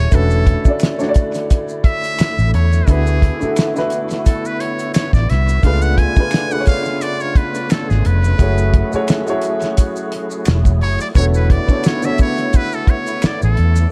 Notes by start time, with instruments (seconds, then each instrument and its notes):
Already playing: upright piano G#3 A3 C#4 E4 F#4 G#4, muted trumpet C#5
0.11 fingered electric bass E1, tonewheel organ D3 A3 E4, upright piano A3 C#4 D4 F#4 B4, muted trumpet A4, kick, closed hi-hat, maracas
0.30 maracas
0.47 kick, closed hi-hat
0.64 upright piano A3 C#4 D4 F#4, muted fingered electric bass stroke, kick, maracas
0.68 upright piano D5
0.80 finger snap, snare, closed hi-hat, maracas
0.98 upright piano A3 D4 F#4 C#5, maracas
1.02 upright piano C#5, snare
1.09 upright piano D5
1.14 kick, closed hi-hat, maracas
1.34 closed hi-hat, maracas
1.50 kick, closed hi-hat, maracas
1.69 maracas
1.84 muted trumpet E5, kick, closed hi-hat
2.03 closed hi-hat, maracas
2.19 finger snap, muted fingered electric bass stroke, snare, closed hi-hat, maracas
2.38 fingered electric bass A1, maracas
2.54 fingered electric bass E2, muted trumpet C#5, closed hi-hat
2.73 maracas
2.86 fingered electric bass D2, tonewheel organ D3 B3 F#4, upright piano A3 D4 E4 F#4, trombone section A3 B3 E4, muted trumpet G#4, kick, closed hi-hat, maracas
2.90 upright piano B4
3.07 maracas
3.22 kick, closed hi-hat
3.40 upright piano A3 D4 E4 F#4, muted fingered electric bass stroke, maracas
3.44 upright piano A4
3.56 finger snap, snare, closed hi-hat, maracas
3.74 upright piano A3 D4 E4 F#4, snare, maracas
3.78 upright piano B4
3.90 closed hi-hat, maracas
4.11 snare, closed hi-hat, maracas
4.26 muted trumpet A4, kick, closed hi-hat, maracas
4.45 muted trumpet B4, maracas
4.60 muted trumpet C#5, closed hi-hat
4.79 closed hi-hat, maracas
4.94 muted trumpet C#5, finger snap, snare, closed hi-hat, maracas
5.13 fingered electric bass A1, muted trumpet D5, kick, snare, maracas
5.30 fingered electric bass C2, muted trumpet E5, snare, closed hi-hat
5.49 maracas
5.62 fingered electric bass C#2, tonewheel organ C#3 A3 B3 D4 F4, upright piano A3 D4 F4 G#4, trombone section B3 D4 F4, muted trumpet F5, kick, closed hi-hat, maracas
5.67 upright piano B4
5.82 muted trumpet F#5, maracas
5.98 muted trumpet G#5, kick, closed hi-hat
6.16 upright piano A3 D4 F4 G#4, muted fingered electric bass stroke, kick, maracas
6.20 upright piano B4
6.31 finger snap, snare, closed hi-hat, maracas
6.50 upright piano A3 D4 F4 G#4, muted trumpet F#5, maracas
6.54 upright piano B4
6.60 upright piano C#5
6.66 muted trumpet F5, kick, closed hi-hat, maracas
6.85 maracas
7.01 muted trumpet D5, closed hi-hat, maracas
7.20 muted trumpet C#5, maracas
7.35 muted trumpet B4, kick, closed hi-hat
7.55 closed hi-hat, maracas
7.70 muted trumpet A4, finger snap, snare, closed hi-hat, maracas
7.90 fingered electric bass G#1, muted trumpet G#4, snare, maracas
8.05 fingered electric bass F1, muted trumpet B4, closed hi-hat
8.24 maracas
8.38 fingered electric bass F#1, tonewheel organ F#3 E4 G#4, upright piano A3 E4 F#4 G#4 C#5, trombone section A3 C#4 F#4, kick, closed hi-hat, maracas
8.58 maracas
8.74 kick, closed hi-hat
8.91 upright piano A3 E4 F#4 G#4, muted fingered electric bass stroke, maracas
8.96 upright piano C#5
9.08 finger snap, snare, closed hi-hat, maracas
9.26 upright piano A3 E4 F#4 G#4, maracas
9.30 upright piano C#5
9.42 closed hi-hat, maracas
9.62 snare, maracas
9.77 kick, closed hi-hat, maracas
9.96 maracas
10.12 closed hi-hat
10.31 maracas
10.45 fingered electric bass E1, finger snap, snare, closed hi-hat, maracas
10.65 kick, maracas
10.82 fingered electric bass F#1, muted trumpet C#5, open hi-hat
11.00 muted trumpet D5, maracas
11.14 fingered electric bass E1, trombone section C#3 B3 E4, upright piano D3 B3 F#4 A4, tonewheel organ A3 B3 E4, muted trumpet C#5, kick, closed hi-hat, maracas
11.19 upright piano C#5
11.34 muted trumpet B4, maracas
11.50 muted trumpet D5, kick, closed hi-hat
11.67 upright piano B3 D4 F#4 A4, muted fingered electric bass stroke, kick, maracas
11.72 upright piano C#5
11.84 muted trumpet C#5, finger snap, snare, closed hi-hat, maracas
12.02 upright piano D3 B3 F#4 A4, muted trumpet E5, maracas
12.06 upright piano C#5
12.18 muted trumpet C#5, kick, closed hi-hat, maracas
12.37 closed hi-hat, maracas
12.53 muted trumpet B4, kick, closed hi-hat, maracas
12.72 muted trumpet A4, maracas
12.87 muted trumpet C#5, kick, closed hi-hat
13.07 closed hi-hat, maracas
13.22 muted trumpet D5, finger snap, muted fingered electric bass stroke, snare, closed hi-hat, maracas
13.42 fingered electric bass A1, muted trumpet A4, maracas
13.57 fingered electric bass E2, closed hi-hat
13.76 maracas